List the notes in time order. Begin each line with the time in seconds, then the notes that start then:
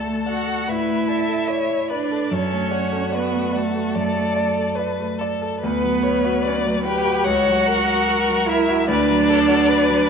Already playing: D2 A3 A4 D5
0.06 A3
0.26 F#4 D5 F#5
0.47 A4
0.68 A2 E4 B4 E5
0.88 A3
1.09 A4 D5
1.28 A4
1.48 C#5 D5
1.70 A3
1.91 D4 B4 D5
2.11 A4
2.31 F#2 C#4 A4 C#5
2.51 A3
2.71 F#4 D5
2.92 A4
3.12 B3 B4 D5
3.33 A3
3.53 A3 A4 D5
3.75 A4
3.95 F#2 D5
4.16 A3
4.36 D5
4.58 A4
4.76 B4 D5
5.00 A3
5.19 A4 D5
5.42 A4
5.60 D2 B3 B4
5.83 F#3
6.03 B4 C#5
6.24 F#4
6.43 B4 D5
6.48 C#4
6.58 B3
6.65 F#3 A3
6.76 B3
6.84 G4 B4 G5
7.05 F#4
7.24 C#2 F#4 C#5 F#5
7.47 F#3
7.67 A#4
7.88 F#4
8.08 A#4
8.28 F#3
8.48 E4 A#4 E5
8.69 F#4
8.88 D2 D4 B4 D5
9.10 F#3
9.30 A4 B4
9.48 F#4
9.69 B4
9.89 F#3